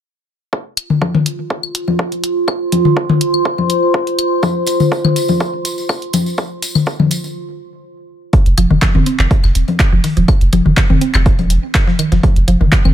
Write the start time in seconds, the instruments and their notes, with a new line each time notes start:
0.53 ambient pad F4, kick
0.77 closed hi-hat, claves
0.90 mid tom
1.02 kick, high conga
1.15 mid tom
1.26 closed hi-hat
1.35 ambient pad C5
1.50 kick
1.63 claves
1.74 ambient pad C6, closed hi-hat
1.88 high conga
1.99 kick
2.12 closed hi-hat
2.24 closed hi-hat
2.48 kick, claves
2.72 closed hi-hat, high conga
2.85 mid tom
2.97 kick
3.09 mid tom
3.21 closed hi-hat
3.34 claves
3.45 kick
3.58 high conga
3.70 closed hi-hat
3.94 kick
4.07 closed hi-hat
4.19 closed hi-hat, claves
4.43 kick, tambourine, high conga
4.67 closed hi-hat, tambourine
4.80 mid tom, tambourine
4.92 kick, tambourine
5.05 mid tom, claves
5.16 closed hi-hat, tambourine
5.28 tambourine, high conga
5.40 kick, tambourine
5.65 closed hi-hat, tambourine
5.78 tambourine
5.89 kick, tambourine, claves
6.02 closed hi-hat
6.13 closed hi-hat, tambourine, high conga
6.26 tambourine
6.38 kick, tambourine
6.62 closed hi-hat, tambourine
6.75 mid tom, tambourine, claves
6.86 kick, tambourine
7.00 mid tom, high conga
7.11 closed hi-hat, tambourine
7.24 tambourine
8.33 kick, closed hi-hat
8.46 sub bass F1, closed hi-hat
8.57 sub bass F1, synth arpeggio sound F3, closed hi-hat, claves
8.70 sub bass F1, synth arpeggio sound D#3, mid tom
8.82 kick, snare, clap, closed hi-hat, high conga
8.95 sub bass F1, synth arpeggio sound C4, mid tom
9.06 synth arpeggio sound C4, closed hi-hat
9.19 sub bass F1, snare, clap
9.31 kick, closed hi-hat
9.44 sub bass F1, snare, claves
9.55 sub bass D#1, closed hi-hat
9.68 closed hi-hat, high conga
9.79 kick, snare, clap, closed hi-hat
9.92 sub bass F1, synth arpeggio sound F3
10.04 synth arpeggio sound D#3, closed hi-hat, open hi-hat
10.17 sub bass D#1, synth arpeggio sound F3, closed hi-hat
10.28 kick, closed hi-hat, claves
10.41 sub bass F1, closed hi-hat
10.53 sub bass F1, synth arpeggio sound F3, closed hi-hat, high conga
10.66 sub bass F1, synth arpeggio sound D#3, mid tom
10.77 kick, snare, clap, closed hi-hat
10.90 sub bass F1, synth arpeggio sound C4, mid tom
11.01 synth arpeggio sound C4, closed hi-hat
11.14 sub bass F1, snare, clap, claves
11.26 kick, closed hi-hat
11.39 sub bass D#1, closed hi-hat, high conga
11.50 sub bass F1, closed hi-hat
11.75 kick, snare, clap, closed hi-hat
11.87 synth arpeggio sound F3, snare
11.99 synth arpeggio sound D#3, closed hi-hat, claves
12.12 sub bass F1, synth arpeggio sound F3, snare, closed hi-hat
12.23 kick, closed hi-hat, high conga
12.36 sub bass F1, closed hi-hat
12.48 sub bass F1, synth arpeggio sound F3, closed hi-hat
12.61 sub bass F1, synth arpeggio sound D#3, mid tom
12.72 kick, snare, clap, closed hi-hat
12.85 sub bass F1, synth arpeggio sound C4, mid tom, claves